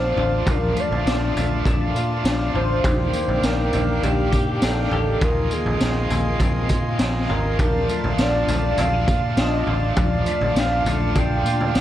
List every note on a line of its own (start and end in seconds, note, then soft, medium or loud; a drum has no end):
0.00 0.13 A#1 medium
0.00 0.16 F3 medium
0.00 0.45 F3 medium
0.00 0.17 A3 medium
0.00 0.75 A3 medium
0.00 0.17 D4 medium
0.00 0.14 F4 medium
0.00 0.16 F4 medium
0.00 2.80 F4 medium
0.00 0.48 C5 loud
0.00 2.80 D5 medium
0.00 5.17 F5 medium
0.00 2.80 A5 medium
0.15 0.43 A1 medium
0.15 0.47 D4 soft
0.15 0.46 F4 medium
0.15 floor tom medium
0.21 0.46 A3 soft
0.45 0.73 A#1 loud
0.45 0.76 A#2 medium
0.45 0.76 F3 medium
0.45 0.77 A3 medium
0.45 0.77 D4 medium
0.45 0.73 F4 medium
0.45 kick loud
0.45 floor tom loud
0.45 tambourine medium
0.49 0.76 A#4 medium
0.74 1.07 D4 soft
0.74 1.05 F4 medium
0.74 tambourine medium
0.80 1.05 A3 soft
0.80 1.63 D5 loud
0.91 1.04 A#1 medium
0.91 floor tom medium
1.05 1.32 A#1 medium
1.05 1.35 F3 medium
1.05 1.36 A3 medium
1.05 1.35 D4 medium
1.05 snare loud
1.05 tambourine medium
1.10 1.32 F4 medium
1.34 1.62 A#1 medium
1.34 1.66 D4 soft
1.34 1.64 F4 medium
1.34 floor tom medium
1.34 tambourine medium
1.39 1.66 A3 soft
1.65 1.92 A#1 loud
1.65 1.95 A#2 medium
1.65 1.96 F3 medium
1.65 1.96 A3 loud
1.65 1.95 D4 medium
1.65 1.93 F4 medium
1.65 kick medium
1.65 floor tom medium
1.65 tambourine medium
1.94 2.21 A#2 medium
1.94 2.26 D4 medium
1.94 2.24 F4 medium
1.94 tambourine medium
1.99 2.25 A3 soft
2.24 2.51 A#1 medium
2.24 2.54 F3 medium
2.24 2.55 A3 medium
2.24 2.55 D4 medium
2.24 snare loud
2.24 tambourine medium
2.29 2.52 F4 medium
2.54 2.81 A1 medium
2.54 2.85 D4 soft
2.54 2.84 F4 soft
2.54 2.83 C5 loud
2.54 floor tom medium
2.59 2.85 A3 soft
2.83 3.10 A#1 loud
2.83 3.13 A#2 medium
2.83 5.19 D#3 medium
2.83 3.14 D#3 medium
2.83 3.14 A#3 medium
2.83 3.15 D4 medium
2.83 3.12 G4 medium
2.83 3.46 C5 loud
2.83 5.20 D5 medium
2.83 5.20 G5 medium
2.83 kick loud
2.83 floor tom loud
2.83 tambourine medium
3.13 3.72 A#3 medium
3.13 3.45 D4 soft
3.13 3.43 G4 medium
3.13 tambourine medium
3.18 3.43 A#3 soft
3.28 3.41 A#1 medium
3.28 floor tom medium
3.42 3.69 A#1 loud
3.42 3.73 D#3 medium
3.42 3.74 A#3 medium
3.42 3.74 D4 medium
3.42 4.05 A#4 loud
3.42 snare loud
3.42 tambourine medium
3.47 3.70 G4 medium
3.72 3.99 A#1 medium
3.72 4.03 D4 medium
3.72 4.02 G4 medium
3.72 floor tom medium
3.72 tambourine medium
3.77 4.02 A#3 soft
4.01 4.29 A#1 loud
4.01 4.32 A#2 medium
4.01 4.33 D#3 medium
4.01 4.33 A#3 medium
4.01 4.32 D4 medium
4.01 4.66 G4 loud
4.01 4.29 G4 medium
4.01 floor tom medium
4.01 tambourine medium
4.31 4.59 A#2 loud
4.31 4.62 D4 soft
4.31 4.61 G4 soft
4.31 kick medium
4.31 tambourine medium
4.36 4.61 A#3 soft
4.60 4.88 A#1 medium
4.60 4.91 D#3 medium
4.60 4.92 A#3 medium
4.60 4.92 D4 medium
4.60 snare loud
4.60 tambourine medium
4.64 4.89 G4 medium
4.64 5.25 A4 loud
4.91 5.18 A1 medium
4.91 5.22 D4 soft
4.91 5.21 G4 soft
4.91 floor tom medium
4.96 5.22 A#3 soft
5.20 5.48 A#1 loud
5.20 5.51 A#2 medium
5.20 5.52 D#3 medium
5.20 5.52 G#3 medium
5.20 5.52 C4 medium
5.20 11.81 F4 medium
5.20 5.49 F4 medium
5.20 5.54 A#4 loud
5.20 7.57 D#5 medium
5.20 7.58 G#5 medium
5.20 7.58 C6 medium
5.20 kick loud
5.20 floor tom loud
5.20 tambourine medium
5.50 6.10 A#3 medium
5.50 5.82 C4 soft
5.50 5.81 F4 medium
5.50 6.41 G#4 medium
5.50 tambourine medium
5.56 5.80 G#3 soft
5.66 5.79 A#1 medium
5.66 floor tom medium
5.79 6.07 A#1 medium
5.79 6.10 D#3 medium
5.79 6.11 G#3 medium
5.79 snare loud
5.79 tambourine medium
5.84 6.11 C4 medium
5.84 6.07 F4 medium
6.09 6.37 A#1 medium
6.09 7.89 A#3 medium
6.09 6.41 C4 soft
6.09 6.40 F4 soft
6.09 floor tom medium
6.09 tambourine medium
6.14 6.40 G#3 soft
6.39 6.66 A#1 loud
6.39 6.69 A#2 medium
6.39 6.70 D#3 medium
6.39 6.71 G#3 medium
6.39 6.70 C4 medium
6.39 kick medium
6.39 floor tom medium
6.39 tambourine medium
6.43 6.67 F4 loud
6.68 6.96 A#2 medium
6.68 7.00 C4 soft
6.68 6.99 F4 medium
6.68 kick medium
6.68 tambourine medium
6.74 6.99 G#3 soft
6.98 7.26 A#1 medium
6.98 7.29 D#3 medium
6.98 7.30 G#3 medium
6.98 snare loud
6.98 tambourine medium
7.02 7.29 C4 medium
7.02 7.26 F4 medium
7.28 7.55 G#1 medium
7.28 7.60 C4 soft
7.28 7.58 F4 medium
7.28 7.58 A#4 medium
7.28 floor tom medium
7.33 7.59 G#3 soft
7.58 7.85 A#1 medium
7.58 7.88 A#2 medium
7.58 7.89 F3 medium
7.58 7.89 A3 medium
7.58 7.88 D4 medium
7.58 7.86 F4 medium
7.58 11.81 D5 medium
7.58 11.81 F5 medium
7.58 11.81 A5 medium
7.58 kick loud
7.58 floor tom loud
7.58 tambourine medium
7.62 8.16 A#4 medium
7.87 8.19 D4 soft
7.87 8.18 F4 medium
7.87 tambourine medium
7.92 8.18 A3 soft
8.03 8.17 A#1 medium
8.03 floor tom medium
8.17 8.44 A#1 medium
8.17 8.48 F3 medium
8.17 8.49 A3 medium
8.17 8.48 D4 medium
8.17 8.82 D5 loud
8.17 snare loud
8.17 tambourine medium
8.22 8.46 F4 medium
8.47 8.74 A#1 medium
8.47 8.79 D4 soft
8.47 8.77 F4 soft
8.47 floor tom medium
8.47 tambourine medium
8.52 8.78 A3 soft
8.77 9.04 A#1 medium
8.77 9.07 A#2 medium
8.77 9.08 F3 medium
8.77 9.08 A3 medium
8.77 8.93 C4 medium
8.77 9.08 D4 medium
8.77 9.06 F4 medium
8.77 9.42 F5 loud
8.77 floor tom medium
8.77 tambourine medium
8.93 9.37 D4 medium
9.07 9.34 A#2 medium
9.07 9.38 D4 soft
9.07 9.37 F4 medium
9.07 kick medium
9.07 tambourine medium
9.12 9.37 A3 soft
9.36 9.63 A#1 medium
9.36 9.67 F3 medium
9.36 9.68 A3 medium
9.36 9.69 D4 medium
9.36 9.72 D#5 loud
9.36 snare loud
9.36 tambourine medium
9.41 9.65 F4 medium
9.67 9.93 A1 medium
9.67 9.98 D4 soft
9.67 9.97 F4 medium
9.67 9.99 D5 medium
9.67 floor tom medium
9.96 10.23 A#1 loud
9.96 10.27 A#2 medium
9.96 10.27 F3 medium
9.96 10.28 A3 medium
9.96 10.27 D4 medium
9.96 10.25 F4 medium
9.96 kick loud
9.96 floor tom loud
9.96 tambourine medium
10.01 10.61 D5 loud
10.26 10.57 D4 soft
10.26 10.56 F4 medium
10.26 tambourine medium
10.31 10.56 A3 soft
10.41 10.54 A#1 medium
10.41 floor tom medium
10.55 10.82 A#1 medium
10.55 10.86 F3 medium
10.55 10.87 A3 medium
10.55 snare loud
10.55 tambourine medium
10.59 10.86 D4 medium
10.59 10.83 F4 medium
10.59 11.20 F5 loud
10.84 11.11 A#1 medium
10.84 11.16 D4 soft
10.84 11.15 F4 soft
10.84 floor tom medium
10.84 tambourine medium
10.90 11.16 A3 soft
11.14 11.42 A#1 loud
11.14 11.45 A#2 medium
11.14 11.46 F3 medium
11.14 11.46 A3 medium
11.14 11.46 D4 medium
11.14 11.79 G5 loud
11.14 kick medium
11.14 floor tom medium
11.14 tambourine medium
11.19 11.43 F4 medium
11.44 11.71 A#2 medium
11.44 11.76 D4 soft
11.44 11.74 F4 soft
11.44 tambourine medium
11.49 11.74 A3 soft
11.61 floor tom medium
11.73 11.81 A#1 medium
11.73 11.81 F3 medium
11.73 11.81 A3 medium
11.73 11.81 D4 medium
11.73 snare loud
11.73 tambourine medium